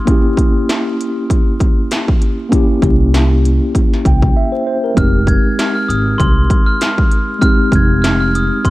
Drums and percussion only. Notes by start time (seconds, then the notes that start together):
0.07 kick, closed hi-hat
0.37 kick, closed hi-hat
0.69 snare, closed hi-hat
1.01 closed hi-hat
1.30 kick, closed hi-hat
1.60 kick, closed hi-hat
1.91 snare, closed hi-hat
2.08 kick
2.22 closed hi-hat
2.52 kick, closed hi-hat
2.82 kick, closed hi-hat
3.14 snare, closed hi-hat
3.45 closed hi-hat
3.75 kick, closed hi-hat
3.94 snare
4.05 kick, closed hi-hat
4.22 kick
4.97 kick, closed hi-hat
5.27 kick, closed hi-hat
5.59 snare, closed hi-hat
5.90 closed hi-hat
6.20 kick, closed hi-hat
6.50 kick, closed hi-hat
6.81 snare, closed hi-hat
6.98 kick
7.11 closed hi-hat
7.42 kick, closed hi-hat
7.72 kick, closed hi-hat
8.04 snare, closed hi-hat
8.35 closed hi-hat
8.65 kick, closed hi-hat